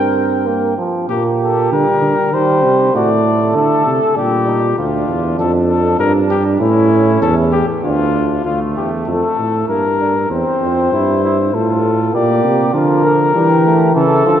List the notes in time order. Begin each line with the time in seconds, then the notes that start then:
Already playing: G2 C4 A#4 G5
0.47 A#3
0.78 F3
1.09 A#2 A#3 G4
1.42 A4
1.72 D3 G3 A#4
2.02 D3
2.33 D#3 G3 G4 C5
2.63 C3
2.94 A2 A3 F#4 D5
3.25 A4
3.55 D3 A4
3.86 C3
4.16 A#2 G3 D4 G4
4.47 D#4
4.78 D2 D4 F4
5.07 E2
5.38 F2 D4 A4
5.69 A4
5.98 G2 D4 A#4
6.30 G4
6.60 A2 C#4 E4
7.22 E2 A4
7.52 G4
7.84 D2 D4 F4
8.45 D2 A3 F4
8.77 E2 G4
9.07 F2 A4
9.38 A2
9.68 G2 A#3 A#4
10.01 D4
10.30 E2 C4 C5
10.61 F2
10.92 G2 E4
11.24 E4
11.53 A2 F4 A4
12.13 A#2 A#3 G4 D5
12.44 C3
12.74 D3 F3 F4 A#4
13.05 A#4
13.35 E3 G3 G4
13.65 A3
13.94 C#3 E3 A4
14.26 D3 F3